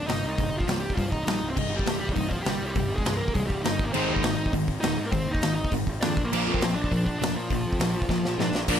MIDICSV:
0, 0, Header, 1, 5, 480
1, 0, Start_track
1, 0, Tempo, 296296
1, 633, Time_signature, 4, 2, 24, 8
1, 14251, End_track
2, 0, Start_track
2, 0, Title_t, "Lead electric guitar"
2, 0, Program_c, 0, 29
2, 98, Note_on_c, 0, 63, 90
2, 126, Note_on_c, 0, 75, 65
2, 402, Note_off_c, 0, 63, 0
2, 422, Note_on_c, 0, 63, 84
2, 453, Note_off_c, 0, 75, 0
2, 473, Note_on_c, 0, 75, 72
2, 927, Note_on_c, 0, 65, 93
2, 937, Note_off_c, 0, 75, 0
2, 955, Note_on_c, 0, 53, 75
2, 963, Note_off_c, 0, 63, 0
2, 1291, Note_off_c, 0, 65, 0
2, 1298, Note_on_c, 0, 67, 98
2, 1307, Note_off_c, 0, 53, 0
2, 1327, Note_on_c, 0, 55, 73
2, 1526, Note_off_c, 0, 67, 0
2, 1533, Note_on_c, 0, 65, 93
2, 1562, Note_off_c, 0, 55, 0
2, 1577, Note_on_c, 0, 53, 74
2, 1779, Note_off_c, 0, 65, 0
2, 1779, Note_on_c, 0, 63, 94
2, 1807, Note_off_c, 0, 53, 0
2, 1809, Note_on_c, 0, 75, 73
2, 2003, Note_off_c, 0, 63, 0
2, 2023, Note_on_c, 0, 63, 92
2, 2043, Note_off_c, 0, 75, 0
2, 2074, Note_on_c, 0, 75, 71
2, 2400, Note_on_c, 0, 60, 84
2, 2408, Note_off_c, 0, 75, 0
2, 2419, Note_off_c, 0, 63, 0
2, 2442, Note_on_c, 0, 72, 67
2, 2516, Note_on_c, 0, 63, 103
2, 2540, Note_off_c, 0, 60, 0
2, 2549, Note_off_c, 0, 72, 0
2, 2564, Note_on_c, 0, 75, 82
2, 2845, Note_off_c, 0, 63, 0
2, 2852, Note_on_c, 0, 67, 96
2, 2893, Note_off_c, 0, 75, 0
2, 2897, Note_on_c, 0, 55, 74
2, 3214, Note_off_c, 0, 67, 0
2, 3234, Note_on_c, 0, 67, 101
2, 3239, Note_off_c, 0, 55, 0
2, 3257, Note_on_c, 0, 55, 76
2, 3445, Note_off_c, 0, 67, 0
2, 3451, Note_on_c, 0, 63, 97
2, 3487, Note_off_c, 0, 55, 0
2, 3511, Note_on_c, 0, 75, 76
2, 3696, Note_off_c, 0, 63, 0
2, 3696, Note_on_c, 0, 65, 101
2, 3733, Note_on_c, 0, 53, 75
2, 3735, Note_off_c, 0, 75, 0
2, 3917, Note_off_c, 0, 65, 0
2, 3917, Note_on_c, 0, 67, 102
2, 3960, Note_off_c, 0, 53, 0
2, 3967, Note_on_c, 0, 55, 78
2, 4291, Note_off_c, 0, 67, 0
2, 4311, Note_on_c, 0, 67, 101
2, 4314, Note_off_c, 0, 55, 0
2, 4355, Note_on_c, 0, 55, 76
2, 4784, Note_off_c, 0, 67, 0
2, 4791, Note_on_c, 0, 68, 106
2, 4801, Note_off_c, 0, 55, 0
2, 4826, Note_on_c, 0, 56, 83
2, 5135, Note_on_c, 0, 70, 103
2, 5161, Note_off_c, 0, 56, 0
2, 5167, Note_on_c, 0, 58, 77
2, 5184, Note_off_c, 0, 68, 0
2, 5386, Note_off_c, 0, 70, 0
2, 5402, Note_on_c, 0, 68, 100
2, 5403, Note_off_c, 0, 58, 0
2, 5420, Note_on_c, 0, 56, 79
2, 5614, Note_off_c, 0, 68, 0
2, 5620, Note_on_c, 0, 67, 96
2, 5650, Note_off_c, 0, 56, 0
2, 5662, Note_on_c, 0, 55, 80
2, 5862, Note_on_c, 0, 63, 98
2, 5890, Note_off_c, 0, 55, 0
2, 5895, Note_off_c, 0, 67, 0
2, 5900, Note_on_c, 0, 75, 76
2, 6216, Note_on_c, 0, 58, 79
2, 6241, Note_off_c, 0, 75, 0
2, 6247, Note_on_c, 0, 70, 67
2, 6260, Note_off_c, 0, 63, 0
2, 6342, Note_off_c, 0, 58, 0
2, 6342, Note_on_c, 0, 60, 103
2, 6365, Note_on_c, 0, 72, 79
2, 6371, Note_off_c, 0, 70, 0
2, 6697, Note_on_c, 0, 63, 100
2, 6705, Note_off_c, 0, 72, 0
2, 6711, Note_on_c, 0, 75, 76
2, 6740, Note_off_c, 0, 60, 0
2, 7032, Note_off_c, 0, 63, 0
2, 7052, Note_on_c, 0, 63, 89
2, 7055, Note_off_c, 0, 75, 0
2, 7075, Note_on_c, 0, 75, 66
2, 7304, Note_off_c, 0, 63, 0
2, 7317, Note_off_c, 0, 75, 0
2, 7784, Note_on_c, 0, 63, 107
2, 7793, Note_on_c, 0, 75, 74
2, 8145, Note_off_c, 0, 75, 0
2, 8164, Note_on_c, 0, 58, 88
2, 8182, Note_off_c, 0, 63, 0
2, 8203, Note_on_c, 0, 70, 65
2, 8225, Note_off_c, 0, 58, 0
2, 8255, Note_off_c, 0, 70, 0
2, 8283, Note_on_c, 0, 60, 102
2, 8299, Note_on_c, 0, 72, 79
2, 8613, Note_on_c, 0, 63, 104
2, 8636, Note_off_c, 0, 72, 0
2, 8643, Note_on_c, 0, 75, 83
2, 8671, Note_off_c, 0, 60, 0
2, 8969, Note_off_c, 0, 63, 0
2, 8988, Note_on_c, 0, 63, 85
2, 8993, Note_off_c, 0, 75, 0
2, 9013, Note_on_c, 0, 75, 68
2, 9234, Note_off_c, 0, 63, 0
2, 9247, Note_off_c, 0, 75, 0
2, 9739, Note_on_c, 0, 74, 69
2, 9766, Note_on_c, 0, 62, 89
2, 10082, Note_off_c, 0, 74, 0
2, 10096, Note_off_c, 0, 62, 0
2, 10121, Note_on_c, 0, 58, 83
2, 10128, Note_on_c, 0, 70, 64
2, 10569, Note_off_c, 0, 70, 0
2, 10572, Note_off_c, 0, 58, 0
2, 10579, Note_on_c, 0, 60, 101
2, 10583, Note_on_c, 0, 72, 60
2, 10921, Note_off_c, 0, 72, 0
2, 10927, Note_on_c, 0, 62, 106
2, 10936, Note_on_c, 0, 74, 81
2, 10960, Note_off_c, 0, 60, 0
2, 11392, Note_off_c, 0, 74, 0
2, 11408, Note_off_c, 0, 62, 0
2, 11424, Note_on_c, 0, 62, 105
2, 11432, Note_on_c, 0, 74, 65
2, 11634, Note_off_c, 0, 62, 0
2, 11635, Note_off_c, 0, 74, 0
2, 11650, Note_on_c, 0, 62, 107
2, 11657, Note_on_c, 0, 74, 63
2, 11887, Note_off_c, 0, 74, 0
2, 11901, Note_on_c, 0, 65, 109
2, 11912, Note_off_c, 0, 62, 0
2, 11923, Note_on_c, 0, 53, 82
2, 13532, Note_off_c, 0, 53, 0
2, 13572, Note_on_c, 0, 62, 79
2, 13597, Note_on_c, 0, 74, 63
2, 13637, Note_off_c, 0, 65, 0
2, 13916, Note_off_c, 0, 62, 0
2, 13929, Note_off_c, 0, 74, 0
2, 14079, Note_on_c, 0, 62, 83
2, 14090, Note_on_c, 0, 74, 102
2, 14160, Note_off_c, 0, 62, 0
2, 14171, Note_off_c, 0, 74, 0
2, 14251, End_track
3, 0, Start_track
3, 0, Title_t, "Overdriven electric guitar"
3, 0, Program_c, 1, 29
3, 136, Note_on_c, 1, 36, 78
3, 141, Note_on_c, 1, 43, 85
3, 360, Note_off_c, 1, 36, 0
3, 363, Note_off_c, 1, 43, 0
3, 608, Note_on_c, 1, 36, 79
3, 613, Note_on_c, 1, 43, 88
3, 836, Note_off_c, 1, 36, 0
3, 839, Note_off_c, 1, 43, 0
3, 1095, Note_on_c, 1, 36, 80
3, 1101, Note_on_c, 1, 43, 86
3, 1319, Note_off_c, 1, 36, 0
3, 1323, Note_off_c, 1, 43, 0
3, 1575, Note_on_c, 1, 36, 71
3, 1582, Note_on_c, 1, 43, 90
3, 1799, Note_off_c, 1, 36, 0
3, 1803, Note_off_c, 1, 43, 0
3, 2061, Note_on_c, 1, 36, 78
3, 2076, Note_on_c, 1, 43, 94
3, 2282, Note_off_c, 1, 36, 0
3, 2290, Note_off_c, 1, 43, 0
3, 2536, Note_on_c, 1, 36, 79
3, 2542, Note_on_c, 1, 43, 82
3, 2760, Note_off_c, 1, 36, 0
3, 2763, Note_off_c, 1, 43, 0
3, 3013, Note_on_c, 1, 36, 73
3, 3020, Note_on_c, 1, 43, 90
3, 3239, Note_off_c, 1, 36, 0
3, 3242, Note_off_c, 1, 43, 0
3, 3495, Note_on_c, 1, 36, 81
3, 3504, Note_on_c, 1, 43, 88
3, 3720, Note_off_c, 1, 36, 0
3, 3724, Note_off_c, 1, 43, 0
3, 3987, Note_on_c, 1, 36, 78
3, 4000, Note_on_c, 1, 43, 90
3, 4206, Note_off_c, 1, 36, 0
3, 4212, Note_off_c, 1, 43, 0
3, 4467, Note_on_c, 1, 36, 73
3, 4477, Note_on_c, 1, 43, 82
3, 4686, Note_off_c, 1, 36, 0
3, 4691, Note_off_c, 1, 43, 0
3, 4954, Note_on_c, 1, 36, 76
3, 4957, Note_on_c, 1, 43, 89
3, 5170, Note_off_c, 1, 36, 0
3, 5171, Note_off_c, 1, 43, 0
3, 5435, Note_on_c, 1, 43, 83
3, 5436, Note_on_c, 1, 36, 77
3, 5651, Note_off_c, 1, 36, 0
3, 5651, Note_off_c, 1, 43, 0
3, 5915, Note_on_c, 1, 36, 77
3, 5925, Note_on_c, 1, 43, 96
3, 6130, Note_off_c, 1, 36, 0
3, 6136, Note_off_c, 1, 43, 0
3, 6383, Note_on_c, 1, 44, 89
3, 6399, Note_on_c, 1, 51, 100
3, 6411, Note_on_c, 1, 56, 102
3, 6855, Note_off_c, 1, 44, 0
3, 6858, Note_off_c, 1, 51, 0
3, 6869, Note_off_c, 1, 56, 0
3, 6871, Note_on_c, 1, 44, 77
3, 6878, Note_on_c, 1, 51, 78
3, 7089, Note_off_c, 1, 44, 0
3, 7092, Note_off_c, 1, 51, 0
3, 7344, Note_on_c, 1, 44, 82
3, 7354, Note_on_c, 1, 51, 88
3, 7566, Note_off_c, 1, 44, 0
3, 7571, Note_off_c, 1, 51, 0
3, 7823, Note_on_c, 1, 44, 84
3, 7828, Note_on_c, 1, 51, 85
3, 8045, Note_off_c, 1, 44, 0
3, 8048, Note_off_c, 1, 51, 0
3, 8292, Note_on_c, 1, 44, 76
3, 8296, Note_on_c, 1, 51, 84
3, 8520, Note_off_c, 1, 44, 0
3, 8522, Note_off_c, 1, 51, 0
3, 8789, Note_on_c, 1, 44, 75
3, 8792, Note_on_c, 1, 51, 79
3, 9009, Note_off_c, 1, 44, 0
3, 9010, Note_off_c, 1, 51, 0
3, 9281, Note_on_c, 1, 44, 83
3, 9281, Note_on_c, 1, 51, 88
3, 9495, Note_off_c, 1, 44, 0
3, 9495, Note_off_c, 1, 51, 0
3, 9765, Note_on_c, 1, 44, 77
3, 9770, Note_on_c, 1, 51, 85
3, 9977, Note_off_c, 1, 44, 0
3, 9979, Note_off_c, 1, 51, 0
3, 10239, Note_on_c, 1, 46, 84
3, 10252, Note_on_c, 1, 53, 103
3, 10262, Note_on_c, 1, 58, 105
3, 10703, Note_off_c, 1, 46, 0
3, 10710, Note_off_c, 1, 53, 0
3, 10715, Note_off_c, 1, 58, 0
3, 10730, Note_on_c, 1, 46, 77
3, 10730, Note_on_c, 1, 53, 86
3, 10939, Note_off_c, 1, 46, 0
3, 10939, Note_off_c, 1, 53, 0
3, 11199, Note_on_c, 1, 53, 94
3, 11201, Note_on_c, 1, 46, 81
3, 11414, Note_off_c, 1, 53, 0
3, 11415, Note_off_c, 1, 46, 0
3, 11689, Note_on_c, 1, 46, 79
3, 11699, Note_on_c, 1, 53, 91
3, 11898, Note_off_c, 1, 46, 0
3, 11903, Note_off_c, 1, 53, 0
3, 12165, Note_on_c, 1, 46, 81
3, 12171, Note_on_c, 1, 53, 96
3, 12376, Note_off_c, 1, 46, 0
3, 12379, Note_off_c, 1, 53, 0
3, 12634, Note_on_c, 1, 46, 74
3, 12636, Note_on_c, 1, 53, 88
3, 12850, Note_off_c, 1, 46, 0
3, 12851, Note_off_c, 1, 53, 0
3, 13120, Note_on_c, 1, 46, 76
3, 13123, Note_on_c, 1, 53, 89
3, 13333, Note_off_c, 1, 46, 0
3, 13334, Note_off_c, 1, 53, 0
3, 13592, Note_on_c, 1, 46, 77
3, 13595, Note_on_c, 1, 53, 94
3, 13808, Note_off_c, 1, 46, 0
3, 13810, Note_off_c, 1, 53, 0
3, 14066, Note_on_c, 1, 46, 102
3, 14078, Note_on_c, 1, 53, 114
3, 14086, Note_on_c, 1, 58, 109
3, 14251, Note_off_c, 1, 46, 0
3, 14251, Note_off_c, 1, 53, 0
3, 14251, Note_off_c, 1, 58, 0
3, 14251, End_track
4, 0, Start_track
4, 0, Title_t, "Picked electric bass"
4, 0, Program_c, 2, 34
4, 127, Note_on_c, 2, 31, 88
4, 325, Note_off_c, 2, 31, 0
4, 347, Note_on_c, 2, 36, 92
4, 553, Note_off_c, 2, 36, 0
4, 628, Note_on_c, 2, 24, 92
4, 817, Note_off_c, 2, 24, 0
4, 829, Note_on_c, 2, 31, 91
4, 1034, Note_off_c, 2, 31, 0
4, 1069, Note_on_c, 2, 24, 92
4, 1461, Note_off_c, 2, 24, 0
4, 1581, Note_on_c, 2, 24, 91
4, 1773, Note_off_c, 2, 24, 0
4, 1805, Note_on_c, 2, 24, 95
4, 2003, Note_off_c, 2, 24, 0
4, 2044, Note_on_c, 2, 34, 91
4, 2243, Note_off_c, 2, 34, 0
4, 2289, Note_on_c, 2, 24, 90
4, 2486, Note_off_c, 2, 24, 0
4, 2535, Note_on_c, 2, 24, 90
4, 2730, Note_off_c, 2, 24, 0
4, 2770, Note_on_c, 2, 31, 87
4, 2966, Note_off_c, 2, 31, 0
4, 3011, Note_on_c, 2, 24, 90
4, 3207, Note_off_c, 2, 24, 0
4, 3258, Note_on_c, 2, 24, 88
4, 3452, Note_off_c, 2, 24, 0
4, 3500, Note_on_c, 2, 24, 94
4, 3880, Note_off_c, 2, 24, 0
4, 3992, Note_on_c, 2, 31, 87
4, 4180, Note_off_c, 2, 31, 0
4, 4251, Note_on_c, 2, 36, 90
4, 4432, Note_off_c, 2, 36, 0
4, 4460, Note_on_c, 2, 24, 98
4, 4652, Note_off_c, 2, 24, 0
4, 4689, Note_on_c, 2, 31, 88
4, 4886, Note_off_c, 2, 31, 0
4, 4938, Note_on_c, 2, 24, 95
4, 5320, Note_off_c, 2, 24, 0
4, 5426, Note_on_c, 2, 24, 92
4, 5617, Note_off_c, 2, 24, 0
4, 5671, Note_on_c, 2, 24, 88
4, 5860, Note_off_c, 2, 24, 0
4, 5889, Note_on_c, 2, 31, 86
4, 6086, Note_off_c, 2, 31, 0
4, 6145, Note_on_c, 2, 32, 90
4, 6336, Note_off_c, 2, 32, 0
4, 6378, Note_on_c, 2, 32, 95
4, 6573, Note_off_c, 2, 32, 0
4, 6628, Note_on_c, 2, 39, 90
4, 6818, Note_off_c, 2, 39, 0
4, 6869, Note_on_c, 2, 32, 91
4, 7059, Note_off_c, 2, 32, 0
4, 7097, Note_on_c, 2, 32, 88
4, 7292, Note_off_c, 2, 32, 0
4, 7340, Note_on_c, 2, 32, 89
4, 7721, Note_off_c, 2, 32, 0
4, 7845, Note_on_c, 2, 27, 84
4, 8029, Note_off_c, 2, 27, 0
4, 8050, Note_on_c, 2, 44, 87
4, 8248, Note_off_c, 2, 44, 0
4, 8294, Note_on_c, 2, 32, 96
4, 8490, Note_off_c, 2, 32, 0
4, 8529, Note_on_c, 2, 39, 91
4, 8727, Note_off_c, 2, 39, 0
4, 8762, Note_on_c, 2, 32, 92
4, 9151, Note_off_c, 2, 32, 0
4, 9268, Note_on_c, 2, 32, 95
4, 9459, Note_off_c, 2, 32, 0
4, 9508, Note_on_c, 2, 32, 88
4, 9699, Note_off_c, 2, 32, 0
4, 9757, Note_on_c, 2, 41, 90
4, 9945, Note_off_c, 2, 41, 0
4, 9996, Note_on_c, 2, 34, 90
4, 10184, Note_off_c, 2, 34, 0
4, 10236, Note_on_c, 2, 34, 96
4, 10424, Note_off_c, 2, 34, 0
4, 10489, Note_on_c, 2, 41, 90
4, 10671, Note_off_c, 2, 41, 0
4, 10716, Note_on_c, 2, 34, 95
4, 10904, Note_off_c, 2, 34, 0
4, 10942, Note_on_c, 2, 34, 91
4, 11135, Note_off_c, 2, 34, 0
4, 11202, Note_on_c, 2, 34, 92
4, 11575, Note_off_c, 2, 34, 0
4, 11666, Note_on_c, 2, 29, 91
4, 11857, Note_off_c, 2, 29, 0
4, 11931, Note_on_c, 2, 46, 93
4, 12113, Note_off_c, 2, 46, 0
4, 12152, Note_on_c, 2, 34, 98
4, 12341, Note_off_c, 2, 34, 0
4, 12403, Note_on_c, 2, 41, 91
4, 12588, Note_off_c, 2, 41, 0
4, 12638, Note_on_c, 2, 34, 89
4, 13012, Note_off_c, 2, 34, 0
4, 13101, Note_on_c, 2, 34, 92
4, 13293, Note_off_c, 2, 34, 0
4, 13337, Note_on_c, 2, 34, 91
4, 13531, Note_off_c, 2, 34, 0
4, 13573, Note_on_c, 2, 44, 89
4, 13768, Note_off_c, 2, 44, 0
4, 13797, Note_on_c, 2, 34, 86
4, 13998, Note_off_c, 2, 34, 0
4, 14072, Note_on_c, 2, 34, 98
4, 14251, Note_off_c, 2, 34, 0
4, 14251, End_track
5, 0, Start_track
5, 0, Title_t, "Drums"
5, 138, Note_on_c, 9, 46, 60
5, 157, Note_on_c, 9, 38, 109
5, 300, Note_off_c, 9, 46, 0
5, 319, Note_off_c, 9, 38, 0
5, 622, Note_on_c, 9, 36, 114
5, 629, Note_on_c, 9, 46, 52
5, 784, Note_off_c, 9, 36, 0
5, 791, Note_off_c, 9, 46, 0
5, 979, Note_on_c, 9, 36, 89
5, 1100, Note_on_c, 9, 46, 61
5, 1120, Note_on_c, 9, 38, 113
5, 1141, Note_off_c, 9, 36, 0
5, 1262, Note_off_c, 9, 46, 0
5, 1282, Note_off_c, 9, 38, 0
5, 1458, Note_on_c, 9, 36, 86
5, 1580, Note_off_c, 9, 36, 0
5, 1580, Note_on_c, 9, 36, 101
5, 1591, Note_on_c, 9, 46, 56
5, 1742, Note_off_c, 9, 36, 0
5, 1753, Note_off_c, 9, 46, 0
5, 1818, Note_on_c, 9, 36, 85
5, 1980, Note_off_c, 9, 36, 0
5, 2057, Note_on_c, 9, 46, 58
5, 2077, Note_on_c, 9, 38, 106
5, 2219, Note_off_c, 9, 46, 0
5, 2239, Note_off_c, 9, 38, 0
5, 2542, Note_on_c, 9, 36, 106
5, 2543, Note_on_c, 9, 49, 97
5, 2704, Note_off_c, 9, 36, 0
5, 2705, Note_off_c, 9, 49, 0
5, 2906, Note_on_c, 9, 36, 90
5, 3017, Note_on_c, 9, 46, 62
5, 3037, Note_on_c, 9, 38, 112
5, 3068, Note_off_c, 9, 36, 0
5, 3179, Note_off_c, 9, 46, 0
5, 3199, Note_off_c, 9, 38, 0
5, 3386, Note_on_c, 9, 36, 88
5, 3496, Note_on_c, 9, 46, 62
5, 3505, Note_off_c, 9, 36, 0
5, 3505, Note_on_c, 9, 36, 99
5, 3658, Note_off_c, 9, 46, 0
5, 3667, Note_off_c, 9, 36, 0
5, 3743, Note_on_c, 9, 36, 84
5, 3905, Note_off_c, 9, 36, 0
5, 3973, Note_on_c, 9, 46, 62
5, 3992, Note_on_c, 9, 38, 107
5, 4135, Note_off_c, 9, 46, 0
5, 4154, Note_off_c, 9, 38, 0
5, 4463, Note_on_c, 9, 46, 57
5, 4468, Note_on_c, 9, 36, 110
5, 4625, Note_off_c, 9, 46, 0
5, 4630, Note_off_c, 9, 36, 0
5, 4829, Note_on_c, 9, 36, 87
5, 4943, Note_on_c, 9, 46, 58
5, 4963, Note_on_c, 9, 38, 115
5, 4991, Note_off_c, 9, 36, 0
5, 5105, Note_off_c, 9, 46, 0
5, 5125, Note_off_c, 9, 38, 0
5, 5314, Note_on_c, 9, 36, 85
5, 5424, Note_on_c, 9, 46, 56
5, 5433, Note_off_c, 9, 36, 0
5, 5433, Note_on_c, 9, 36, 94
5, 5586, Note_off_c, 9, 46, 0
5, 5595, Note_off_c, 9, 36, 0
5, 5671, Note_on_c, 9, 36, 87
5, 5833, Note_off_c, 9, 36, 0
5, 5904, Note_on_c, 9, 46, 56
5, 5924, Note_on_c, 9, 38, 110
5, 6066, Note_off_c, 9, 46, 0
5, 6086, Note_off_c, 9, 38, 0
5, 6147, Note_on_c, 9, 36, 116
5, 6309, Note_off_c, 9, 36, 0
5, 6381, Note_on_c, 9, 49, 91
5, 6543, Note_off_c, 9, 49, 0
5, 6746, Note_on_c, 9, 36, 85
5, 6851, Note_on_c, 9, 46, 64
5, 6870, Note_on_c, 9, 38, 113
5, 6908, Note_off_c, 9, 36, 0
5, 7013, Note_off_c, 9, 46, 0
5, 7032, Note_off_c, 9, 38, 0
5, 7225, Note_on_c, 9, 36, 85
5, 7342, Note_off_c, 9, 36, 0
5, 7342, Note_on_c, 9, 36, 97
5, 7346, Note_on_c, 9, 46, 61
5, 7504, Note_off_c, 9, 36, 0
5, 7508, Note_off_c, 9, 46, 0
5, 7582, Note_on_c, 9, 36, 87
5, 7744, Note_off_c, 9, 36, 0
5, 7819, Note_on_c, 9, 46, 64
5, 7839, Note_on_c, 9, 38, 118
5, 7981, Note_off_c, 9, 46, 0
5, 8001, Note_off_c, 9, 38, 0
5, 8302, Note_on_c, 9, 36, 104
5, 8303, Note_on_c, 9, 46, 57
5, 8464, Note_off_c, 9, 36, 0
5, 8465, Note_off_c, 9, 46, 0
5, 8661, Note_on_c, 9, 36, 88
5, 8778, Note_on_c, 9, 46, 61
5, 8797, Note_on_c, 9, 38, 117
5, 8823, Note_off_c, 9, 36, 0
5, 8940, Note_off_c, 9, 46, 0
5, 8959, Note_off_c, 9, 38, 0
5, 9145, Note_on_c, 9, 36, 86
5, 9260, Note_on_c, 9, 46, 60
5, 9267, Note_off_c, 9, 36, 0
5, 9267, Note_on_c, 9, 36, 99
5, 9422, Note_off_c, 9, 46, 0
5, 9429, Note_off_c, 9, 36, 0
5, 9510, Note_on_c, 9, 36, 87
5, 9672, Note_off_c, 9, 36, 0
5, 9742, Note_on_c, 9, 46, 55
5, 9761, Note_on_c, 9, 38, 110
5, 9904, Note_off_c, 9, 46, 0
5, 9923, Note_off_c, 9, 38, 0
5, 9996, Note_on_c, 9, 36, 111
5, 10158, Note_off_c, 9, 36, 0
5, 10251, Note_on_c, 9, 57, 92
5, 10413, Note_off_c, 9, 57, 0
5, 10600, Note_on_c, 9, 36, 89
5, 10711, Note_on_c, 9, 46, 60
5, 10731, Note_on_c, 9, 38, 111
5, 10762, Note_off_c, 9, 36, 0
5, 10873, Note_off_c, 9, 46, 0
5, 10893, Note_off_c, 9, 38, 0
5, 11082, Note_on_c, 9, 36, 84
5, 11206, Note_off_c, 9, 36, 0
5, 11206, Note_on_c, 9, 36, 97
5, 11209, Note_on_c, 9, 46, 62
5, 11368, Note_off_c, 9, 36, 0
5, 11371, Note_off_c, 9, 46, 0
5, 11445, Note_on_c, 9, 36, 86
5, 11607, Note_off_c, 9, 36, 0
5, 11704, Note_on_c, 9, 46, 66
5, 11723, Note_on_c, 9, 38, 112
5, 11866, Note_off_c, 9, 46, 0
5, 11885, Note_off_c, 9, 38, 0
5, 12152, Note_on_c, 9, 46, 63
5, 12158, Note_on_c, 9, 36, 104
5, 12314, Note_off_c, 9, 46, 0
5, 12320, Note_off_c, 9, 36, 0
5, 12515, Note_on_c, 9, 36, 90
5, 12632, Note_on_c, 9, 46, 64
5, 12652, Note_on_c, 9, 38, 113
5, 12677, Note_off_c, 9, 36, 0
5, 12794, Note_off_c, 9, 46, 0
5, 12814, Note_off_c, 9, 38, 0
5, 12990, Note_on_c, 9, 36, 84
5, 13107, Note_off_c, 9, 36, 0
5, 13107, Note_on_c, 9, 36, 100
5, 13115, Note_on_c, 9, 38, 63
5, 13269, Note_off_c, 9, 36, 0
5, 13277, Note_off_c, 9, 38, 0
5, 13368, Note_on_c, 9, 38, 64
5, 13530, Note_off_c, 9, 38, 0
5, 13611, Note_on_c, 9, 38, 92
5, 13773, Note_off_c, 9, 38, 0
5, 13848, Note_on_c, 9, 38, 94
5, 14010, Note_off_c, 9, 38, 0
5, 14066, Note_on_c, 9, 36, 117
5, 14067, Note_on_c, 9, 49, 120
5, 14228, Note_off_c, 9, 36, 0
5, 14229, Note_off_c, 9, 49, 0
5, 14251, End_track
0, 0, End_of_file